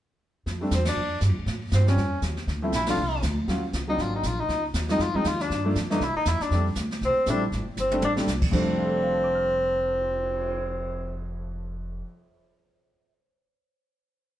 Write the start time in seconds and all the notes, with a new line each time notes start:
0.46 F2, brush sweep, kick, snare
0.61 G3 A3 C4 D4
0.71 E2 C4, kick, snare, hi-hat pedal
0.85 D4, snare, ride
0.96 F2, brush sweep
1.20 G2, kick, snare, hi-hat pedal
1.29 F2
1.38 D2
1.46 A2, brush sweep, kick, snare
1.71 G2 C4, kick, snare, hi-hat pedal
1.87 F3 G3 C4 C#4, snare
1.97 F2, brush sweep, kick, snare
2.22 D#2, kick, snare, hi-hat pedal
2.37 snare
2.47 D2, brush sweep, kick, snare
2.62 F3 A3 C4 E4
2.72 A#1 E4, kick, snare, hi-hat pedal
2.86 F3 A3 C4 D4, snare, ride
2.90 F4
2.97 C2, brush sweep
3.22 D2, kick, snare, hi-hat pedal
3.48 D#2 F#3 A#3 C#4 F4, brush sweep, kick, snare
3.73 C#2, kick, snare, hi-hat pedal
3.88 F#3 A#3 C4 D4 D#4
3.98 G#1 F4, brush sweep, kick, snare
4.16 D#4
4.23 A#1 F4, kick, snare, hi-hat pedal
4.40 D#4
4.48 C#2, brush sweep, kick, snare
4.74 D#2, kick, snare, hi-hat pedal
4.89 F3 G#3 C4 D#4, snare
4.99 F2 F4, brush sweep, kick, snare
5.14 F3 G#3 C4 D#4, muted upright bass stroke
5.24 D#2 F4, kick, snare, hi-hat pedal
5.40 D4, snare
5.50 G2, brush sweep, kick, snare
5.65 F3 A3 A#3 D4
5.75 F2, kick, snare, hi-hat pedal
5.90 E3 A3 A#3 D4 D#4, snare
6.00 C2 E4, brush sweep, kick, snare
6.15 D#4, muted upright bass stroke
6.25 E2 E4, kick, snare, hi-hat pedal
6.40 D4, muted upright bass stroke, snare
6.51 F2 G3 A3 C4 D4, brush sweep, kick, snare
6.75 D2, kick, snare, hi-hat pedal
6.91 snare
7.01 C2 C4, brush sweep, kick, snare
7.15 muted upright bass stroke
7.26 A#1 G3 A3 C4 E4, kick, snare, hi-hat pedal
7.30 D4
7.52 A1, brush sweep, kick, snare
7.66 muted upright bass stroke
7.76 G1 C4, hi-hat pedal, high tom
7.91 G3 A3 C4 D4, high tom
8.01 A1 D4, high tom
8.16 G3 A3 C4 D4, snare
8.27 C2, snare, hi-hat pedal
8.42 kick, crash
8.51 F1 F2 F3 G3 A3 C4 D4, kick, crash
8.67 cymbal swell
8.78 F4
8.85 A4
8.94 D5
9.03 F5
9.13 A5
9.24 D6
9.35 F6